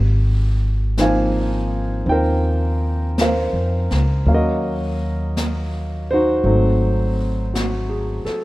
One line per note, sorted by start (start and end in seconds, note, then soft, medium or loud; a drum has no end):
0.00 2.01 G#1 medium
0.00 0.10 G4 soft
0.97 4.26 F3 soft
0.97 4.26 A#3 soft
0.97 2.04 C4 soft
0.97 2.06 D#4 medium
0.97 2.04 G#5 medium
0.97 brush sweep soft
0.97 snare soft
0.97 hi-hat pedal soft
1.02 2.10 C5 soft
1.02 3.14 F5 soft
2.06 3.48 D#2 medium
2.06 4.25 C4 soft
2.06 4.26 D#4 soft
2.06 4.27 F4 soft
2.06 3.13 G5 medium
2.06 brush sweep soft
2.11 3.20 A#4 soft
2.11 3.20 C5 medium
3.18 4.24 A#4 soft
3.18 4.24 C5 soft
3.18 4.27 F5 medium
3.18 brush sweep soft
3.18 snare soft
3.18 hi-hat pedal soft
3.53 3.87 F2 soft
3.91 4.24 C#2 soft
3.91 snare soft
4.26 6.40 D#2 medium
4.26 6.43 F#3 soft
4.26 6.45 A#3 soft
4.26 6.45 C#4 soft
4.26 6.45 F5 soft
4.26 brush sweep soft
4.34 6.12 F#4 soft
4.34 6.44 A#4 soft
4.34 5.35 D#5 medium
5.37 brush sweep soft
5.37 snare soft
5.37 hi-hat pedal soft
6.11 6.45 D#4 medium
6.11 7.52 F#4 medium
6.11 7.51 C5 medium
6.44 8.21 G#1 medium
6.44 8.44 F#3 soft
6.44 8.44 A3 soft
6.44 8.44 C4 soft
6.44 8.44 D#4 soft
6.44 brush sweep soft
7.54 8.21 F#4 soft
7.54 brush sweep soft
7.54 snare soft
7.54 hi-hat pedal soft
7.89 8.44 G#4 soft
8.25 8.44 A4 soft
8.25 muted upright bass stroke soft
8.25 snare soft